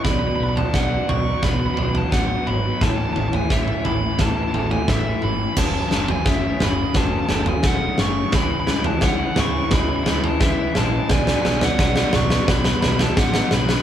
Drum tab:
CC |----------------|----------------|x---------------|----------------|
SD |o---o---o---o---|o---o---o---o---|o-o-o-o-o-o-o-o-|o-o-o-o-o-o-o-o-|
T2 |------o-------o-|-----oo-----o-o-|------o-------o-|------o-------o-|
FT |o--o--o-o-oo----|o-oo--o-o-oo----|o--o--o-o-oo----|o--o--o-o-oo----|
BD |o---o---o---o---|o---o---o---o---|o---o---o---o---|o---o---o---o---|

CC |----------------|
SD |oooooooooooooooo|
T2 |------o-------o-|
FT |o--o--o-o-oo----|
BD |o---o---o---o---|